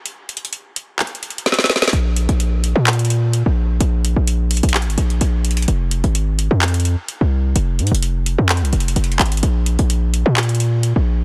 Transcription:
0.06 closed hi-hat
0.29 closed hi-hat
0.37 closed hi-hat
0.45 closed hi-hat
0.53 closed hi-hat
0.76 closed hi-hat
0.99 clap, closed hi-hat
1.07 closed hi-hat
1.15 closed hi-hat
1.23 closed hi-hat
1.30 closed hi-hat
1.38 closed hi-hat
1.46 snare, closed hi-hat
1.52 snare, closed hi-hat
1.59 snare, closed hi-hat
1.64 snare
1.70 snare, closed hi-hat
1.76 snare, closed hi-hat
1.82 snare, closed hi-hat
1.88 snare, closed hi-hat
1.93 808-style bass A#1, closed hi-hat
2.16 closed hi-hat
2.29 808-style bass A#1, closed hi-hat
2.40 closed hi-hat
2.64 closed hi-hat
2.76 808-style bass A#2
2.87 clap, closed hi-hat
2.93 closed hi-hat
2.99 closed hi-hat
3.05 closed hi-hat
3.10 closed hi-hat
3.33 closed hi-hat
3.46 808-style bass A#1
3.80 808-style bass A#1, closed hi-hat
4.05 closed hi-hat
4.16 808-style bass A#1
4.27 closed hi-hat
4.51 closed hi-hat, open hi-hat
4.57 closed hi-hat
4.63 808-style bass A#1, closed hi-hat
4.69 closed hi-hat
4.74 clap, closed hi-hat
4.82 closed hi-hat
4.87 808-style bass G#1, closed hi-hat
4.98 808-style bass A#1, closed hi-hat
5.10 closed hi-hat
5.21 808-style bass A#1, closed hi-hat
5.45 closed hi-hat
5.51 closed hi-hat
5.57 closed hi-hat
5.62 closed hi-hat
5.68 808-style bass F1, closed hi-hat
5.91 closed hi-hat
6.04 808-style bass G#1, closed hi-hat
6.15 closed hi-hat
6.39 closed hi-hat
6.51 808-style bass F2
6.62 clap, closed hi-hat
6.68 closed hi-hat
6.74 closed hi-hat
6.80 closed hi-hat
6.85 closed hi-hat
7.08 closed hi-hat
7.21 808-style bass C2
7.56 808-style bass F1, closed hi-hat
7.79 808-style bass G#2, closed hi-hat
7.87 closed hi-hat
7.91 808-style bass F1, closed hi-hat
8.03 closed hi-hat
8.26 closed hi-hat
8.38 808-style bass F2
8.49 clap, closed hi-hat
8.57 closed hi-hat
8.62 808-style bass C2, closed hi-hat
8.73 808-style bass F1, closed hi-hat
8.80 closed hi-hat
8.88 closed hi-hat
8.96 808-style bass F1, closed hi-hat
9.04 closed hi-hat
9.12 closed hi-hat
9.19 808-style bass G#1, clap, closed hi-hat
9.26 closed hi-hat
9.32 closed hi-hat
9.37 closed hi-hat
9.43 808-style bass A#1, closed hi-hat
9.66 closed hi-hat
9.79 808-style bass A#1, closed hi-hat
9.90 closed hi-hat
10.14 closed hi-hat
10.26 808-style bass A#2
10.37 clap, closed hi-hat
10.43 closed hi-hat
10.49 closed hi-hat
10.55 closed hi-hat
10.60 closed hi-hat
10.83 closed hi-hat
10.96 808-style bass A#1

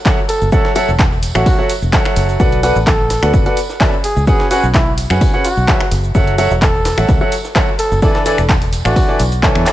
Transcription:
0.05 grand piano F#3 F#4 A4 C#5 E5 F#5, kick, snare, clap, tambourine, cabasa, shaker
0.17 tambourine
0.29 muted trumpet A4, open hi-hat, tambourine, cabasa, shaker
0.41 fingered electric bass F#1, tambourine, cabasa
0.52 grand piano F#3 F#4 A4 C#5 E5 F#5, muted trumpet A4, kick, tambourine, cabasa, shaker
0.65 snare, tambourine
0.75 grand piano F#3 F#4 A4 C#5 E5 F#5, muted trumpet A4, open hi-hat, tambourine, cabasa, shaker
0.88 fingered electric bass E1, muted trumpet A4, tambourine, cabasa
0.99 kick, snare, clap, tambourine, cabasa, shaker
1.12 tambourine
1.23 open hi-hat, tambourine, cabasa, shaker
1.35 fingered electric bass A1, grand piano F#3 F#4 A4 C#5 E5 F#5, muted trumpet F#4, finger snap, cabasa
1.46 kick, open hi-hat, tambourine, cabasa
1.58 grand piano F#3 F#4 A4 C#5 E5 F#5, tambourine
1.70 open hi-hat, tambourine, cabasa, shaker
1.82 fingered electric bass E1, tambourine, cabasa
1.93 grand piano F#3 F#4 A4 C#5 E5 F#5, kick, snare, clap, tambourine, cabasa, shaker
2.05 finger snap, snare
2.16 fingered electric bass F#1, open hi-hat, tambourine, cabasa, shaker
2.29 tambourine, cabasa
2.40 fingered electric bass B1, grand piano B3 F#4 A4 B4 D5 F#5, kick, tambourine, cabasa, shaker
2.52 closed hi-hat, tambourine
2.63 grand piano B3 F#4 A4 B4 D5 F#5, open hi-hat, tambourine, cabasa, shaker
2.75 fingered electric bass A1, tambourine, cabasa
2.87 muted trumpet A4, kick, snare, clap, tambourine, cabasa, shaker
2.99 tambourine
3.10 snare, open hi-hat, tambourine, cabasa, shaker
3.22 fingered electric bass D2, grand piano B3 F#4 A4 B4 D5 F#5, finger snap, tambourine, cabasa
3.34 fingered electric bass F#1, kick, tambourine, cabasa, shaker
3.46 grand piano B3 F#4 A4 B4 D5 F#5, closed hi-hat, tambourine
3.57 open hi-hat, tambourine, cabasa, shaker
3.70 snare, tambourine, cabasa
3.80 grand piano C#4 F#4 A4 B4 D5 E5, kick, snare, clap, tambourine, cabasa, shaker
3.93 tambourine
4.04 muted trumpet G#4, open hi-hat, tambourine, cabasa, shaker
4.16 fingered electric bass C#2, tambourine, cabasa
4.27 grand piano C#4 F#4 G#4 B4 C#5 F#5, muted trumpet G#4, kick, tambourine, cabasa, shaker
4.40 snare, tambourine
4.51 grand piano C#4 F#4 G#4 B4 C#5 F#5, muted trumpet F#4, open hi-hat, tambourine, cabasa, shaker
4.63 fingered electric bass B1, tambourine, cabasa
4.74 muted trumpet E4, kick, snare, clap, tambourine, cabasa, shaker
4.86 tambourine
4.98 open hi-hat, tambourine, cabasa, shaker
5.10 fingered electric bass F#2, grand piano C#4 F#4 G#4 B4 C#5 F#5, finger snap, tambourine, cabasa
5.21 kick, open hi-hat, tambourine, cabasa
5.33 grand piano C#4 F#4 G#4 B4 C#5 F#5, tambourine
5.45 muted trumpet F#4, open hi-hat, tambourine, cabasa, shaker
5.57 fingered electric bass B1, tambourine, cabasa
5.68 grand piano F#3 F#4 G#4 B4 C#5 E5, kick, snare, clap, tambourine, cabasa, shaker
5.80 finger snap, snare, tambourine
5.91 fingered electric bass F#1, open hi-hat, tambourine, cabasa, shaker
6.03 tambourine, cabasa
6.15 fingered electric bass F#1, grand piano F#3 F#4 A4 C#5 E5 F#5, kick, tambourine, cabasa, shaker
6.27 closed hi-hat, tambourine
6.38 grand piano F#3 F#4 A4 C#5 E5 F#5, open hi-hat, tambourine, cabasa, shaker
6.50 fingered electric bass E1, tambourine, cabasa
6.61 muted trumpet A4, kick, snare, clap, tambourine, cabasa, shaker
6.75 tambourine
6.85 snare, open hi-hat, tambourine, cabasa, shaker
6.98 fingered electric bass A1, grand piano F#3 F#4 A4 C#5 E5 F#5, finger snap, tambourine, cabasa
7.09 fingered electric bass C#2, kick, snare, tambourine, cabasa, shaker
7.21 grand piano F#3 F#4 A4 C#5 E5 F#5, tambourine
7.32 open hi-hat, tambourine, cabasa, shaker
7.45 snare, tambourine, cabasa
7.55 grand piano F#3 F#4 A4 C#5 E5 F#5, kick, snare, clap, tambourine, cabasa, shaker
7.68 tambourine
7.79 muted trumpet A4, open hi-hat, tambourine, cabasa, shaker
7.91 fingered electric bass F#1, tambourine, cabasa
8.02 grand piano E3 D4 E4 A4 B4 D5, muted trumpet A4, kick, tambourine, cabasa, shaker
8.15 snare, tambourine
8.26 grand piano E3 D4 E4 A4 B4 D5, muted trumpet A4, open hi-hat, tambourine, cabasa, shaker
8.38 fingered electric bass E1, muted trumpet A4, finger snap, tambourine, cabasa
8.49 kick, snare, clap, tambourine, cabasa, shaker
8.62 open hi-hat, tambourine
8.72 open hi-hat, tambourine, cabasa, shaker
8.85 fingered electric bass A1, grand piano E3 D4 E4 A4 B4 D5, muted trumpet F#4, finger snap, tambourine, cabasa
8.96 kick, open hi-hat, tambourine, cabasa
9.08 grand piano E3 D4 E4 A4 B4 D5, tambourine
9.20 fingered electric bass B1, open hi-hat, tambourine, cabasa, shaker
9.32 closed hi-hat, tambourine, cabasa
9.42 grand piano E3 D4 E4 A4 B4 C#5, kick, clap, tambourine, cabasa, shaker
9.55 fingered electric bass E2, finger snap, closed hi-hat, tambourine
9.66 clap, open hi-hat, tambourine, cabasa, shaker

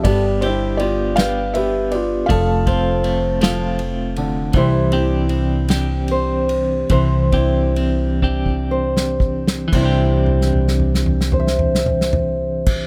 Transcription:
Already playing: clean electric guitar D4 G4
0.04 upright bass G1, steel-string acoustic guitar G3 A4, clean electric guitar B3, felt piano G4 D5, kick, ride
0.41 clean electric guitar D4 G4, steel-string acoustic guitar G4, felt piano C5, ride
0.45 felt piano E4
0.77 clean electric guitar B3, felt piano F4 D5, ride
1.16 clean electric guitar B3 D4 G4, felt piano B4 F5, snare, ride
1.54 felt piano G4 E5, steel-string acoustic guitar B4, ride
1.91 felt piano F4 D5, ride
2.26 upright bass F1, steel-string acoustic guitar F3, clean electric guitar A3, felt piano F5, kick, ride
2.31 felt piano A4, steel-string acoustic guitar A4
2.66 clean electric guitar A3 C4 F4, steel-string acoustic guitar C4, kick, ride
3.04 clean electric guitar A3, ride
3.41 steel-string acoustic guitar F3, clean electric guitar A3 C4 F4, snare, ride
3.79 ride
4.16 steel-string acoustic guitar D3, ride
4.53 upright bass C2, steel-string acoustic guitar C3 G3 E4 G4, clean electric guitar E3, kick, ride
4.58 steel-string acoustic guitar C5
4.92 clean electric guitar C4 D4 G4, steel-string acoustic guitar E4, ride
5.29 clean electric guitar C4, ride
5.68 clean electric guitar C4 D4 G4, snare, ride
6.08 steel-string acoustic guitar C5, ride
6.49 ride
6.90 upright bass C2, steel-string acoustic guitar C3 C5, clean electric guitar E3, kick, ride
7.32 clean electric guitar C4 D4 G4, steel-string acoustic guitar E4, kick, ride
7.76 clean electric guitar C4, ride
8.22 clean electric guitar C4 D4 G4, kick
8.46 kick
8.71 steel-string acoustic guitar C5
8.97 snare
9.20 kick
9.47 snare
9.68 clean electric guitar E3
9.72 upright bass C2, steel-string acoustic guitar C3 G3 E4, clean electric guitar C4, kick, crash
9.79 clean electric guitar D4, steel-string acoustic guitar G4 C5
9.85 clean electric guitar G4
10.26 floor tom
10.41 snare
10.53 floor tom
10.68 snare
10.80 floor tom
10.95 snare
11.06 floor tom
11.21 snare
11.32 steel-string acoustic guitar C5, floor tom
11.40 steel-string acoustic guitar E5
11.47 snare
11.59 floor tom
11.75 snare
11.86 floor tom
12.01 snare
12.13 floor tom
12.66 kick, crash

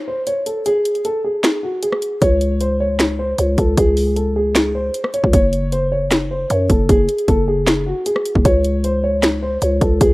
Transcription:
0.08 grand piano C5
0.27 grand piano C#5, closed hi-hat
0.46 grand piano A4, closed hi-hat
0.66 grand piano G#4, closed hi-hat
0.85 closed hi-hat, open hi-hat
0.95 closed hi-hat
1.05 grand piano A4, closed hi-hat
1.24 grand piano G#4
1.44 finger snap, snare, closed hi-hat
1.63 grand piano F#4
1.83 grand piano G#4, closed hi-hat
1.92 cross-stick
2.02 closed hi-hat
2.22 808-style bass C#2, grand piano C#5, kick, closed hi-hat
2.41 closed hi-hat
2.61 grand piano C5, closed hi-hat
2.80 grand piano C#5
3.00 finger snap, snare, closed hi-hat
3.19 grand piano C5
3.38 808-style bass C#2, grand piano C#5, closed hi-hat
3.58 808-style bass C#2, grand piano A4, kick, closed hi-hat
3.77 808-style bass C#2, grand piano G#4, kick, closed hi-hat
3.97 open hi-hat
4.16 grand piano A4, closed hi-hat
4.36 grand piano G#4
4.55 finger snap, snare, closed hi-hat
4.75 grand piano C5
4.94 closed hi-hat
5.04 cross-stick
5.14 grand piano C#5, closed hi-hat
5.24 808-style bass C#2, kick
5.33 808-style bass F#1, grand piano C#5, kick, closed hi-hat
5.53 closed hi-hat
5.72 grand piano C5, closed hi-hat
5.92 grand piano C#5
6.11 finger snap, snare, closed hi-hat
6.31 grand piano C5
6.50 808-style bass F#2, grand piano C#5, closed hi-hat
6.70 808-style bass F#1, grand piano A4, kick, closed hi-hat
6.89 808-style bass F#1, grand piano G#4, kick, closed hi-hat
7.09 closed hi-hat, open hi-hat
7.18 closed hi-hat
7.28 808-style bass F#1, grand piano A4, kick, closed hi-hat
7.48 grand piano G#4
7.67 finger snap, snare, closed hi-hat
7.86 grand piano F#4
8.06 grand piano G#4, closed hi-hat
8.16 cross-stick
8.25 closed hi-hat
8.35 808-style bass F#1, kick
8.45 808-style bass C#2, grand piano C#5, kick, closed hi-hat
8.64 closed hi-hat
8.84 grand piano C5, closed hi-hat
9.04 grand piano C#5
9.23 finger snap, snare, closed hi-hat
9.42 grand piano C5
9.62 808-style bass C#2, grand piano C#5, closed hi-hat
9.81 808-style bass C#2, grand piano A4, kick, closed hi-hat
10.01 808-style bass C#2, grand piano G#4, kick, closed hi-hat

